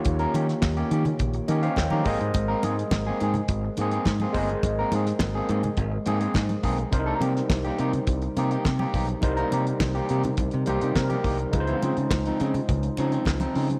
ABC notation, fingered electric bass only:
X:1
M:4/4
L:1/16
Q:1/4=104
K:Ab
V:1 name="Fingered electric bass" clef=bass
E,,2 E,2 E,,2 E,2 B,,,2 E,2 E,, E, A,,, A,, | A,,,2 A,,2 A,,,2 A,,2 A,,,2 A,,2 A,,2 G,,,2 | A,,,2 A,,2 A,,,2 A,,2 A,,,2 A,,2 A,,2 _C,,2 | C,,2 C,2 C,,2 C,2 C,,2 C,2 C,2 _C,,2 |
C,,2 C,2 C,,2 C,2 C,, C, C,, C, C,2 C,,2 | D,,2 D, D, D,,2 D,2 D,,2 D,2 D,,2 D,2 |]